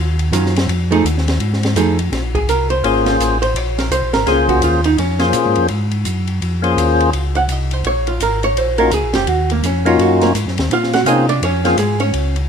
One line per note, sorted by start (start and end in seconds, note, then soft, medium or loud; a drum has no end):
0.00 0.31 D#2 medium
0.19 ride medium
0.32 0.67 F#2 loud
0.32 0.53 D#3 medium
0.32 0.53 F#3 medium
0.32 0.53 C#4 medium
0.32 0.53 F4 medium
0.32 hi-hat pedal medium
0.32 ride medium
0.46 snare soft
0.56 snare medium
0.56 ride medium
0.68 1.03 F2 medium
0.68 ride medium
0.91 1.03 F3 medium
0.91 1.03 A3 medium
0.91 1.04 D#4 medium
0.91 1.04 G#4 medium
0.91 ride soft
1.04 1.39 D#2 medium
1.04 hi-hat pedal medium
1.04 ride medium
1.18 snare soft
1.28 snare soft
1.28 ride medium
1.40 1.75 G#2 medium
1.40 ride medium
1.53 snare soft
1.63 snare soft
1.63 ride medium
1.75 2.10 F2 medium
1.75 1.96 F3 medium
1.75 1.96 A3 medium
1.75 1.97 D#4 medium
1.75 1.97 G#4 medium
1.75 hi-hat pedal medium
1.75 ride medium
1.99 ride soft
2.11 2.46 A#1 medium
2.11 snare soft
2.11 ride medium
2.35 2.48 G#4 medium
2.35 kick medium
2.35 ride soft
2.48 2.82 C2 medium
2.48 2.70 A#4 medium
2.48 hi-hat pedal soft
2.48 ride medium
2.70 2.85 C5 medium
2.70 ride soft
2.83 3.18 G#1 medium
2.83 3.37 A#3 medium
2.83 3.38 C#4 medium
2.83 3.38 F4 medium
2.83 3.38 G#4 soft
2.83 3.38 C5 medium
2.83 3.06 C#5 medium
2.83 ride medium
3.06 3.21 F4 soft
3.06 snare soft
3.06 ride soft
3.19 3.54 A1 medium
3.19 3.42 G#4 medium
3.19 hi-hat pedal medium
3.19 ride medium
3.42 3.57 C5 medium
3.42 ride soft
3.54 3.90 A#1 medium
3.54 3.78 C#5 medium
3.54 ride medium
3.78 3.91 A#4 medium
3.78 snare soft
3.78 ride soft
3.90 4.02 C2 medium
3.90 4.13 C5 medium
3.90 hi-hat pedal medium
3.90 ride medium
4.02 4.15 A#1 medium
4.13 4.26 G#1 medium
4.13 4.27 A#4 medium
4.13 snare soft
4.13 ride soft
4.26 4.61 C#2 medium
4.26 4.80 A#3 medium
4.26 4.80 C#4 medium
4.26 4.81 F4 soft
4.26 4.81 G#4 medium
4.26 4.48 G#4 medium
4.26 4.81 C5 medium
4.26 snare soft
4.26 ride medium
4.49 4.62 F#4 medium
4.49 kick medium
4.49 ride soft
4.62 4.97 D#2 medium
4.62 4.85 F4 medium
4.62 hi-hat pedal soft
4.62 ride medium
4.84 4.98 D#4 medium
4.84 ride medium
4.98 5.33 F2 medium
4.98 5.53 C#4 medium
4.98 ride medium
5.19 5.67 A#3 medium
5.19 5.67 C#4 medium
5.19 5.67 F4 medium
5.19 5.67 G#4 medium
5.19 5.67 C5 medium
5.19 snare soft
5.19 ride soft
5.33 5.45 A#2 medium
5.33 hi-hat pedal medium
5.33 ride medium
5.45 5.58 G#2 medium
5.55 5.69 F2 medium
5.55 ride soft
5.68 6.05 G#2 medium
5.68 ride medium
5.91 ride soft
6.05 6.40 F#2 medium
6.05 hi-hat pedal medium
6.05 ride medium
6.27 ride soft
6.41 6.76 F2 medium
6.41 ride medium
6.62 7.10 A#3 medium
6.62 7.10 C#4 medium
6.62 7.10 F4 medium
6.62 7.11 G#4 medium
6.62 7.10 C5 medium
6.62 ride soft
6.77 7.12 D#2 medium
6.77 hi-hat pedal medium
6.77 ride medium
7.00 ride soft
7.13 7.48 C#2 medium
7.13 ride medium
7.35 7.52 F#5 medium
7.35 ride soft
7.48 7.83 C2 medium
7.48 7.73 D#5 medium
7.48 hi-hat pedal soft
7.48 ride medium
7.71 7.85 C5 medium
7.71 ride soft
7.84 8.19 A#1 medium
7.84 8.07 C#5 medium
7.84 ride medium
8.07 8.20 F4 medium
8.07 ride soft
8.20 8.55 G#1 medium
8.20 8.43 A#4 medium
8.20 hi-hat pedal soft
8.20 ride medium
8.43 8.58 C#5 loud
8.43 ride soft
8.55 8.90 A#1 medium
8.55 8.78 C5 medium
8.55 ride medium
8.78 8.90 A#3 medium
8.78 8.91 C#4 medium
8.78 8.91 D#4 medium
8.78 8.91 F4 medium
8.78 8.91 F#4 medium
8.78 8.91 A#4 medium
8.78 ride soft
8.91 9.03 C#2 medium
8.91 9.15 G#4 medium
8.91 hi-hat pedal soft
8.91 ride medium
9.03 9.15 A#1 medium
9.13 9.26 F#1 medium
9.13 9.29 G4 medium
9.13 snare medium
9.13 ride soft
9.27 9.62 D#2 medium
9.27 9.50 F#4 medium
9.27 ride medium
9.50 9.64 A#3 medium
9.50 ride medium
9.63 9.98 F2 medium
9.63 9.86 C#4 medium
9.63 hi-hat pedal medium
9.63 ride medium
9.85 10.32 A#3 medium
9.85 10.32 C#4 medium
9.85 10.32 D#4 medium
9.85 10.33 F4 medium
9.85 9.99 F4 medium
9.85 10.33 F#4 medium
9.85 ride soft
9.98 10.33 F#2 medium
9.98 10.22 F#4 medium
9.98 ride medium
10.21 10.31 A#3 medium
10.21 snare soft
10.21 ride soft
10.34 10.46 G#2 medium
10.34 hi-hat pedal medium
10.34 ride medium
10.47 10.59 F#2 medium
10.47 snare soft
10.58 10.70 D#2 medium
10.58 snare soft
10.58 ride medium
10.70 11.05 A#2 medium
10.70 10.93 F4 medium
10.70 10.93 F5 medium
10.70 ride medium
10.83 snare soft
10.93 11.06 F#4 medium
10.93 11.06 F#5 loud
10.93 snare soft
10.93 ride soft
11.06 11.41 C3 medium
11.06 11.26 A#3 medium
11.06 11.26 C4 medium
11.06 11.27 C#4 medium
11.06 11.29 D#4 medium
11.06 11.27 F4 medium
11.06 11.27 G#4 medium
11.06 11.29 D#5 medium
11.06 hi-hat pedal medium
11.06 ride medium
11.29 11.42 D4 medium
11.29 11.42 D5 loud
11.29 ride soft
11.42 11.76 F2 medium
11.42 11.65 C#4 medium
11.42 11.64 C#5 medium
11.42 ride medium
11.64 11.78 F3 soft
11.64 11.76 A#3 medium
11.64 11.77 C4 medium
11.64 11.77 C#4 medium
11.64 11.78 F4 medium
11.64 11.77 F4 medium
11.64 11.77 G#4 medium
11.64 snare soft
11.64 ride soft
11.77 12.12 G#2 medium
11.77 12.00 G#3 medium
11.77 12.00 G#4 medium
11.77 hi-hat pedal soft
11.77 ride medium
12.00 12.33 C#4 medium
12.00 12.33 C#5 medium
12.00 ride soft
12.13 12.48 C#2 medium
12.13 ride medium
12.36 ride soft